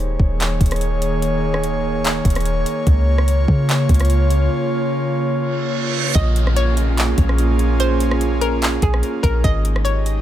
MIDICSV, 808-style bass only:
0, 0, Header, 1, 2, 480
1, 0, Start_track
1, 0, Tempo, 410959
1, 1430, Time_signature, 4, 2, 24, 8
1, 11931, End_track
2, 0, Start_track
2, 0, Title_t, "808-style bass"
2, 0, Program_c, 0, 38
2, 0, Note_on_c, 0, 27, 112
2, 200, Note_off_c, 0, 27, 0
2, 228, Note_on_c, 0, 27, 103
2, 690, Note_off_c, 0, 27, 0
2, 708, Note_on_c, 0, 27, 106
2, 2582, Note_off_c, 0, 27, 0
2, 2628, Note_on_c, 0, 27, 104
2, 3090, Note_off_c, 0, 27, 0
2, 3350, Note_on_c, 0, 37, 107
2, 4041, Note_off_c, 0, 37, 0
2, 4068, Note_on_c, 0, 49, 99
2, 4529, Note_off_c, 0, 49, 0
2, 4547, Note_on_c, 0, 37, 106
2, 5239, Note_off_c, 0, 37, 0
2, 7188, Note_on_c, 0, 34, 117
2, 8342, Note_off_c, 0, 34, 0
2, 8386, Note_on_c, 0, 34, 114
2, 10261, Note_off_c, 0, 34, 0
2, 10308, Note_on_c, 0, 34, 108
2, 10539, Note_off_c, 0, 34, 0
2, 10787, Note_on_c, 0, 34, 105
2, 11019, Note_off_c, 0, 34, 0
2, 11029, Note_on_c, 0, 32, 113
2, 11931, Note_off_c, 0, 32, 0
2, 11931, End_track
0, 0, End_of_file